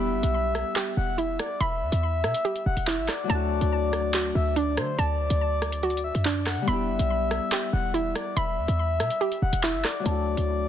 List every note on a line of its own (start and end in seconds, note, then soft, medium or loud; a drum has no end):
0.00 0.14 E1 loud
0.00 3.35 G3 medium
0.00 3.24 B3 medium
0.00 3.26 E4 medium
0.00 3.30 G4 medium
0.00 0.93 E5 loud
0.00 1.59 B5 loud
0.13 0.23 G1 loud
0.23 0.64 B1 loud
0.23 closed hi-hat medium
0.55 cross-stick medium
0.55 closed hi-hat medium
0.76 2.44 G4 medium
0.76 clap loud
0.76 closed hi-hat medium
0.97 1.38 E1 loud
0.97 1.17 F#5 loud
1.18 2.86 E4 medium
1.18 1.38 E5 medium
1.18 closed hi-hat medium
1.39 1.59 D5 medium
1.39 cross-stick loud
1.39 closed hi-hat medium
1.60 1.83 E1 loud
1.60 2.62 E5 loud
1.60 3.30 B5 loud
1.60 closed hi-hat medium
1.82 1.92 E2 loud
1.92 2.25 E2 loud
1.92 closed hi-hat medium
2.24 2.34 B2 loud
2.24 cross-stick medium
2.24 closed hi-hat medium
2.34 closed hi-hat medium
2.45 3.29 G4 medium
2.45 closed hi-hat soft
2.56 closed hi-hat medium
2.66 2.76 E1 loud
2.66 2.86 F#5 medium
2.77 2.99 E1 loud
2.77 closed hi-hat medium
2.87 3.30 E4 loud
2.87 3.07 E5 medium
2.87 clap loud
2.98 3.08 G1 loud
3.08 3.29 D5 medium
3.08 cross-stick medium
3.08 clap medium
3.08 closed hi-hat medium
3.24 6.73 F#3 medium
3.24 6.63 A3 medium
3.30 3.60 D2 loud
3.30 6.64 D4 medium
3.30 4.31 D5 loud
3.30 4.97 A5 loud
3.30 closed hi-hat medium
3.35 6.68 F#4 medium
3.61 4.32 D2 loud
3.61 closed hi-hat medium
3.93 cross-stick medium
3.93 closed hi-hat medium
4.14 5.82 F#4 medium
4.14 clap loud
4.14 closed hi-hat medium
4.35 4.79 D2 loud
4.35 4.55 E5 medium
4.56 6.24 D4 loud
4.56 4.76 D5 medium
4.56 closed hi-hat medium
4.77 4.98 D3 loud
4.77 4.98 C5 medium
4.77 cross-stick loud
4.77 closed hi-hat medium
4.98 5.29 D2 loud
4.98 6.00 D5 loud
4.98 6.68 A5 loud
4.98 closed hi-hat medium
5.30 6.11 D2 loud
5.30 closed hi-hat medium
5.62 cross-stick medium
5.62 closed hi-hat medium
5.72 closed hi-hat medium
5.83 6.68 F#4 medium
5.83 closed hi-hat soft
5.90 closed hi-hat medium
5.97 closed hi-hat medium
6.04 6.24 E5 medium
6.15 6.59 F#2 loud
6.15 closed hi-hat medium
6.25 6.68 D4 loud
6.25 6.45 D5 medium
6.25 clap loud
6.46 6.67 F#5 medium
6.46 cross-stick loud
6.46 clap medium
6.46 open hi-hat medium
6.57 6.67 D3 loud
6.62 10.11 G3 medium
6.62 10.01 B3 medium
6.68 6.90 E1 loud
6.68 10.02 E4 medium
6.68 7.69 E5 loud
6.68 8.35 B5 loud
6.68 closed hi-hat medium
6.73 10.06 G4 medium
6.89 6.99 G1 loud
6.99 7.40 B1 loud
6.99 closed hi-hat medium
7.31 cross-stick medium
7.31 closed hi-hat medium
7.52 9.20 G4 medium
7.52 clap loud
7.52 closed hi-hat medium
7.73 8.14 E1 loud
7.73 7.93 F#5 loud
7.94 9.62 E4 loud
7.94 8.14 E5 medium
7.94 closed hi-hat medium
8.15 8.36 D5 medium
8.15 cross-stick loud
8.15 closed hi-hat medium
8.36 8.59 E1 loud
8.36 9.38 E5 loud
8.36 10.06 B5 loud
8.36 closed hi-hat medium
8.58 8.68 E2 loud
8.68 9.01 E2 loud
8.68 closed hi-hat medium
9.00 9.10 B2 loud
9.00 cross-stick medium
9.00 closed hi-hat medium
9.10 closed hi-hat medium
9.21 10.05 G4 medium
9.21 closed hi-hat soft
9.32 closed hi-hat medium
9.42 9.52 E1 loud
9.42 9.62 F#5 medium
9.53 9.75 E1 loud
9.53 closed hi-hat medium
9.63 10.06 E4 loud
9.63 9.83 E5 medium
9.63 clap loud
9.74 9.84 G1 loud
9.84 10.05 D5 medium
9.84 cross-stick loud
9.84 clap medium
9.84 closed hi-hat medium
10.00 10.69 F#3 medium
10.00 10.69 A3 medium
10.06 10.36 D2 loud
10.06 10.69 D4 medium
10.06 10.69 D5 loud
10.06 10.69 A5 loud
10.06 closed hi-hat medium
10.11 10.69 F#4 medium
10.37 10.69 D2 loud
10.37 closed hi-hat medium